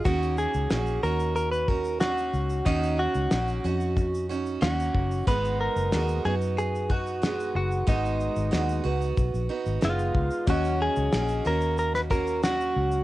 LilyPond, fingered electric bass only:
\new Staff \with { instrumentName = "Fingered electric bass" } { \clef bass \time 4/4 \key dis \minor \tempo 4 = 92 dis,8. cis,16 ais,,8 dis,2 cis,8 | dis,8. cis,16 ais,,8 eis,4. dis,8 fis,,8 | gis,,8. fis,,16 dis,8 fis,2 fis,,8 | gis,,8. gis,,16 dis,8 cis,8 b,,16 ais,,16 r16 gis,,16 fis,,8 cis,16 r16 |
dis,8. cis,16 ais,,8 dis,2 cis,8 | }